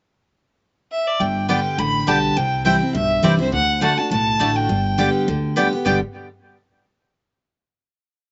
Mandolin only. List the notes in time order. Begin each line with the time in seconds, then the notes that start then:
1.49 B3 G4 D5 G5
2.07 B3 G4 D5 G5
2.65 C4 E4 C5 G5
3.23 C4 E4 C5 G5
3.81 A3 F#4 D5 A5
4.40 A3 F#4 D5 A5
4.98 B3 G4 D5 G5
5.56 B3 G4 D5 G5
5.85 B3 G4 D5 G5